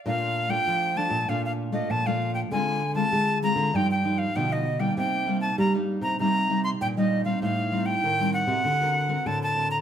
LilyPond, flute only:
\new Staff \with { instrumentName = "Flute" } { \time 4/4 \key bes \major \tempo 4 = 98 f''8. g''8. a''8 f''16 f''8 ees''16 a''16 f''8 g''16 | aes''8. a''8. bes''8 g''16 g''8 f''16 g''16 ees''8 g''16 | g''8. a''16 bes''16 r8 bes''16 bes''8. c'''16 g''16 ees''8 f''16 | f''8. g''8. ges''4. a''16 a''8 bes''16 | }